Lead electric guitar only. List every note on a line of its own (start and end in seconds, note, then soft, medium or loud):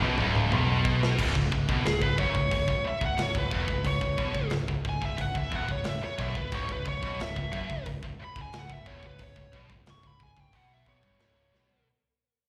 1.86 2.01 G#4 medium
2.01 2.18 B4 medium
2.18 2.83 C#5 loud
2.88 3.03 E5 medium
3.06 3.20 F#5 medium
3.22 3.37 C#5 medium
3.38 3.85 B4 medium
3.87 4.51 C#5 loud
4.89 5.04 G#5 loud
5.05 5.21 E5 medium
5.21 5.38 F#5 medium
5.38 5.55 E5 medium
5.55 5.70 F#5 medium
5.72 5.88 C#5 loud
5.88 6.03 E5 medium
6.04 6.20 C#5 medium
6.22 6.37 E5 medium
6.37 6.54 B4 medium
6.54 6.70 C#5 medium
6.72 6.87 B4 loud
6.89 7.20 C#5 medium
7.22 7.86 E5 medium
8.24 8.38 B5 medium
8.42 8.55 G#5 medium
8.59 8.73 F#5 medium
8.73 8.87 E5 medium
8.87 9.03 C#5 medium
9.07 9.21 B4 medium
9.23 9.54 C#5 loud
9.90 10.07 C#6 loud
10.07 10.21 B5 medium
10.23 10.40 G#5 medium
10.40 10.55 G5 medium
10.56 10.71 F#5 medium
10.74 10.88 E5 medium
10.89 11.20 C#5 medium
11.21 11.86 C#5 medium